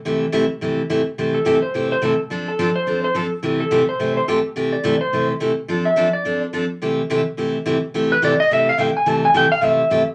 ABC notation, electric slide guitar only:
X:1
M:4/4
L:1/8
Q:"Swing" 1/4=213
K:C
V:1 name="Electric slide guitar"
z8 | z A2 c2 c A z | z A2 c2 c A z | z A2 c2 c A z |
z d2 c2 z3 | z e2 d2 z3 | z8 | z B d _e =e f g _a |
a _a g f e3 z |]